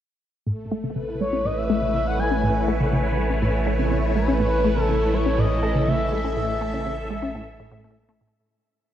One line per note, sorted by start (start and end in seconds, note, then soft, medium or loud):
0.47 8.31 A1 medium
0.47 0.53 A2 medium
0.47 8.34 A3 medium
0.47 8.34 G#5 medium
0.71 0.78 A3 loud
0.84 0.93 C#3 medium
0.89 5.73 B4 medium
0.96 1.02 C#3 medium
1.05 8.33 E4 medium
1.21 1.24 G#3 medium
1.21 1.47 C#5 medium
1.33 1.39 C#4 medium
1.45 1.51 A2 medium
1.45 1.59 D#5 loud
1.57 1.94 E5 loud
1.70 1.76 A3 loud
1.82 1.91 C#3 medium
1.94 2.00 C#3 medium
1.94 2.06 E5 loud
2.07 2.21 F#5 loud
2.19 2.23 G#3 medium
2.19 6.05 C#5 medium
2.19 2.68 G#5 loud
2.31 2.37 C#4 medium
2.43 2.50 A2 medium
2.68 2.74 A3 loud
2.80 2.90 C#3 medium
2.93 2.99 C#3 medium
3.17 3.21 G#3 medium
3.30 3.36 C#4 medium
3.42 3.48 A2 medium
3.67 3.73 A3 loud
3.79 3.88 C#3 medium
3.91 3.97 C#3 medium
4.16 4.19 G#3 medium
4.16 4.82 B4 loud
4.28 4.34 C#4 medium
4.40 4.46 A2 medium
4.64 4.71 A3 loud
4.77 4.86 C#3 medium
4.82 5.16 A4 loud
4.89 4.95 C#3 medium
5.14 5.18 G#3 medium
5.14 5.40 C#5 medium
5.26 5.32 C#4 medium
5.38 5.45 A2 medium
5.38 5.90 D#5 loud
5.57 8.33 A4 medium
5.63 5.69 A3 loud
5.75 5.85 C#3 medium
5.87 5.94 C#3 medium
5.87 6.12 E5 loud
5.87 8.34 E5 medium
6.12 6.16 G#3 medium
6.12 7.81 E5 loud
6.25 6.31 C#4 medium
6.37 6.43 A2 medium
6.61 6.68 A3 loud
6.74 6.83 C#3 medium
6.86 6.92 C#3 medium
7.10 7.14 G#3 medium
7.22 7.29 C#4 medium
7.35 7.41 A2 medium
7.60 7.66 A2 medium
7.72 7.78 A2 loud
7.84 7.91 A3 medium
8.09 8.18 A3 loud
8.21 8.27 A2 medium